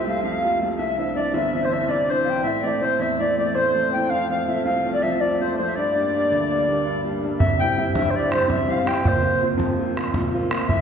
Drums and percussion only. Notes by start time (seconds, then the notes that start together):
7.40 bodhran
7.60 bodhran
7.95 bodhran
8.32 bodhran
8.50 bodhran
8.87 bodhran
9.05 bodhran
9.25 bodhran
9.60 bodhran
9.97 bodhran
10.14 bodhran
10.51 bodhran
10.69 bodhran